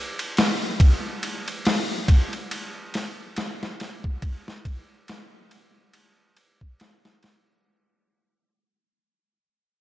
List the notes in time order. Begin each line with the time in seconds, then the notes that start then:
0.19 ride
0.37 snare, open hi-hat
0.80 kick, ride
1.23 ride
1.48 ride
1.65 snare, open hi-hat
2.08 kick, ride
2.33 ride
2.51 ride
2.94 snare, ride
3.36 snare, ride
3.63 snare
3.80 snare, ride
4.04 kick
4.22 kick, ride
4.48 snare
4.65 kick, ride
5.08 snare, ride
5.51 ride
5.93 ride
6.37 ride
6.61 kick
6.80 snare, ride
7.05 snare
7.23 snare, ride